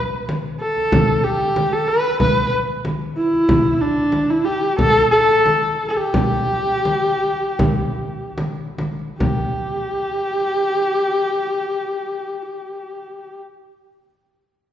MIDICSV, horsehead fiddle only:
0, 0, Header, 1, 2, 480
1, 0, Start_track
1, 0, Tempo, 641711
1, 691, Time_signature, 4, 2, 24, 8
1, 3574, Tempo, 689655
1, 5014, Tempo, 764331
1, 5974, Tempo, 829876
1, 6454, Tempo, 857143
1, 9547, End_track
2, 0, Start_track
2, 0, Title_t, "Horsehead fiddle"
2, 0, Program_c, 0, 110
2, 450, Note_on_c, 0, 69, 96
2, 929, Note_on_c, 0, 67, 96
2, 941, Note_off_c, 0, 69, 0
2, 1292, Note_on_c, 0, 69, 97
2, 1303, Note_off_c, 0, 67, 0
2, 1406, Note_on_c, 0, 71, 109
2, 1418, Note_off_c, 0, 69, 0
2, 1646, Note_off_c, 0, 71, 0
2, 1653, Note_on_c, 0, 71, 102
2, 1873, Note_off_c, 0, 71, 0
2, 2369, Note_on_c, 0, 64, 102
2, 2850, Note_on_c, 0, 62, 105
2, 2862, Note_off_c, 0, 64, 0
2, 3217, Note_on_c, 0, 64, 100
2, 3228, Note_off_c, 0, 62, 0
2, 3328, Note_on_c, 0, 67, 102
2, 3339, Note_off_c, 0, 64, 0
2, 3573, Note_off_c, 0, 67, 0
2, 3584, Note_on_c, 0, 69, 126
2, 3794, Note_off_c, 0, 69, 0
2, 3805, Note_on_c, 0, 69, 111
2, 4316, Note_off_c, 0, 69, 0
2, 4344, Note_on_c, 0, 69, 68
2, 4397, Note_on_c, 0, 67, 96
2, 4408, Note_off_c, 0, 69, 0
2, 5973, Note_off_c, 0, 67, 0
2, 6444, Note_on_c, 0, 67, 92
2, 8794, Note_off_c, 0, 67, 0
2, 9547, End_track
0, 0, End_of_file